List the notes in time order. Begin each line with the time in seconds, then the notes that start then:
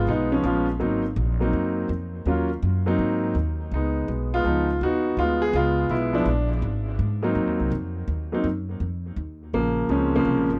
0.07 B1 G#3 B3 D#4
0.32 F3 G#3 C#4
0.43 A#1 F3 G#3 B3 F4
0.80 G#1 F#3 A#3 C4 D#4
1.16 A#1
1.40 F#3 A#3 C4 D#4
1.53 F#2
1.89 F2
2.26 D#2 F#3 A#3 C#4 F4
2.62 F#2
2.86 F#3 A#3 C4 D#4
2.99 G#2
3.35 D#2
3.71 C#2 G#3 B3 D#4
4.08 B1
4.34 G#3 B3 F4
4.44 C#2 F3 G#3 B3 D#4
4.81 D#2 B3 D#4 F#4
5.17 D2 G#3 B3 F4
5.42 G#4
5.53 C#2 G#3 B3 F4
5.89 B1 G#3 B3 E4
6.13 F3 G#3 B3 D4 E4
6.26 A#1
6.62 G#1
6.99 G#2
7.22 F#3 A#3 C4 D#4
7.35 F#2
7.47 D#2
7.60 C2
7.72 F2
8.08 D#2
8.32 F#3 A#3 C4 D#4
8.44 F#2
8.80 F2
9.16 D#2
9.53 A#1 C#3 F3 A#3
9.89 C#2 F3 G#3 C4 C#4
10.16 C#3 F3 A#3
10.25 C2
10.37 A#1
10.50 G#1